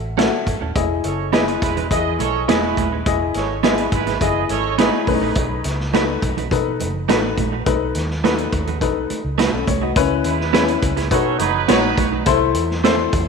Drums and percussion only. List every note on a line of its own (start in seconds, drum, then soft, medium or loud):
0.19 snare loud
0.19 closed hi-hat medium
0.47 kick medium
0.47 closed hi-hat medium
0.76 kick medium
0.76 closed hi-hat medium
0.76 muted conga soft
1.04 closed hi-hat medium
1.33 snare loud
1.33 closed hi-hat medium
1.33 high conga medium
1.48 closed hi-hat soft
1.62 kick medium
1.62 closed hi-hat medium
1.77 closed hi-hat soft
1.77 low conga medium
1.91 kick medium
1.91 closed hi-hat medium
2.19 closed hi-hat medium
2.19 muted conga soft
2.19 low conga medium
2.49 snare loud
2.49 closed hi-hat loud
2.49 high conga medium
2.77 kick medium
2.77 closed hi-hat medium
2.77 high conga medium
3.06 kick loud
3.06 closed hi-hat medium
3.06 muted conga soft
3.34 snare soft
3.34 closed hi-hat medium
3.64 snare loud
3.64 closed hi-hat medium
3.64 high conga medium
3.78 closed hi-hat soft
3.92 kick medium
3.92 closed hi-hat medium
4.07 snare soft
4.07 closed hi-hat soft
4.07 low conga medium
4.21 kick medium
4.21 closed hi-hat medium
4.21 muted conga soft
4.21 low conga medium
4.49 closed hi-hat medium
4.49 muted conga soft
4.78 snare loud
4.78 closed hi-hat medium
4.78 high conga medium
5.07 kick medium
5.07 open hi-hat soft
5.07 high conga medium
5.35 kick medium
5.35 closed hi-hat medium
5.35 muted conga soft
5.64 snare soft
5.64 closed hi-hat medium
5.80 snare soft
5.94 snare loud
5.94 closed hi-hat medium
5.94 high conga medium
6.22 kick medium
6.22 closed hi-hat medium
6.37 closed hi-hat soft
6.37 low conga medium
6.51 kick medium
6.51 closed hi-hat medium
6.51 muted conga soft
6.80 closed hi-hat medium
6.80 muted conga soft
6.80 low conga medium
7.09 snare loud
7.09 closed hi-hat medium
7.09 high conga medium
7.37 kick medium
7.37 closed hi-hat medium
7.37 high conga medium
7.66 kick loud
7.66 closed hi-hat medium
7.66 muted conga soft
7.95 snare soft
7.95 closed hi-hat medium
8.10 snare soft
8.24 snare loud
8.24 closed hi-hat medium
8.24 high conga medium
8.38 closed hi-hat soft
8.53 kick medium
8.53 closed hi-hat medium
8.67 closed hi-hat soft
8.67 low conga medium
8.81 kick medium
8.81 closed hi-hat medium
8.81 low conga medium
9.10 closed hi-hat medium
9.10 muted conga soft
9.39 snare loud
9.39 closed hi-hat medium
9.39 high conga medium
9.67 kick medium
9.67 closed hi-hat medium
9.67 high conga medium
9.96 kick loud
9.96 closed hi-hat medium
9.96 muted conga soft
10.24 closed hi-hat medium
10.41 snare soft
10.54 snare loud
10.54 closed hi-hat medium
10.54 high conga medium
10.68 closed hi-hat soft
10.82 kick medium
10.82 closed hi-hat medium
10.97 snare soft
10.97 closed hi-hat soft
11.11 kick medium
11.11 closed hi-hat medium
11.11 muted conga soft
11.39 closed hi-hat medium
11.39 muted conga soft
11.39 low conga medium
11.68 snare loud
11.68 closed hi-hat loud
11.68 high conga medium
11.98 kick medium
11.98 closed hi-hat medium
11.98 high conga medium
12.26 kick loud
12.26 closed hi-hat medium
12.26 muted conga soft
12.55 closed hi-hat medium
12.71 snare soft
12.84 snare loud
12.84 closed hi-hat medium
12.84 high conga medium
13.13 kick loud
13.13 closed hi-hat medium